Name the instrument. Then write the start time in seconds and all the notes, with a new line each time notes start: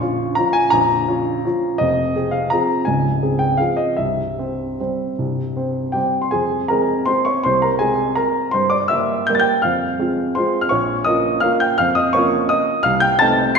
grand piano
Already playing: A#0 A#1 C#6
0.01 C#4 F4
0.35 F3 C#4 F4 A#5
0.53 G#5
0.70 A#0 A#1 A#5
1.08 C#4 F4
1.45 F3 C#4 F4
1.78 F1 F2 D#5
2.16 C4 G#4
2.31 F5
2.50 F3 C4 G#4 A#5
2.85 C#1 C#2 G#5
3.23 C4 G#4
3.39 G5
3.57 F3 C4 G#4 F5
3.77 D#5
3.97 C1 C2 E5
4.39 C4 C5
4.80 G3 C4 C5
5.18 C1 C2
5.57 C4 C5
5.92 G3 C4 G4 C5 G5
6.22 C6
6.31 F2 G#4 G#5
6.68 G#3 C4 G#4 A#4 A#5
7.06 G#3 C4 G#4 C5 C6
7.25 C#5 C#6
7.43 C2 C5 C6
7.62 A#4 A#5
7.79 G#3 C4 G#4 G#5
8.15 A#4 A#5
8.51 G2 C5 C6
8.70 D5 D6
8.88 G3 A#3 A#4 E5 E6
9.27 G3 A#3 A#4 G6
9.35 A6
9.40 G5 G6
9.62 F2 F5 F6
9.99 G#3 C4 F4
10.35 G#3 C4 F4 C5 C6
10.61 F6
10.69 A#1 C#5 C#6
11.05 A#3 C#4 F4 D#5 D#6
11.40 A#3 C#4 F4 F5 F6
11.60 G5 G6
11.78 F2 F5 F6
11.95 D#5 D#6
12.13 A#3 C#4 F4 C#5 C#6
12.49 D#5 D#6
12.83 C2 F5 F6
13.00 G5 G6
13.19 A3 C4 D#4 A5 A6
13.55 C7